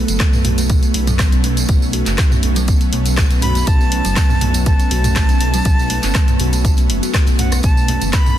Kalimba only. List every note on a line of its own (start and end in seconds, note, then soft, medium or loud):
0.20 0.33 A3 medium
0.45 0.52 F#4 medium
0.58 0.69 A3 medium
0.83 0.93 B3 medium
1.07 1.14 F#3 loud
1.19 1.31 B3 medium
1.44 1.57 A3 loud
1.69 1.81 A3 medium
1.94 2.01 F#4 medium
2.07 2.17 A3 medium
2.32 2.42 B3 medium
2.57 2.63 F#3 loud
2.68 2.80 B3 medium
2.93 3.06 A3 loud
3.18 3.30 A3 medium
3.43 3.50 F#4 medium
3.56 3.66 A3 medium
3.81 3.91 B3 medium
4.05 4.11 F#3 loud
4.17 4.29 B3 medium
4.42 4.54 A3 loud
4.66 4.79 A3 medium
4.91 4.98 F#4 medium
5.05 5.15 A3 medium
5.29 5.40 B3 medium
5.54 5.60 F#3 loud
5.65 5.77 B3 medium
5.90 6.03 A3 loud
6.15 6.28 A3 medium
6.41 6.47 F#4 medium
6.54 6.64 A3 medium
6.78 6.89 B3 medium
7.03 7.09 F#4 medium
7.15 7.26 A3 medium
7.39 7.52 A3 medium
7.64 7.76 B3 medium
7.89 8.01 A3 loud
8.14 8.26 A3 medium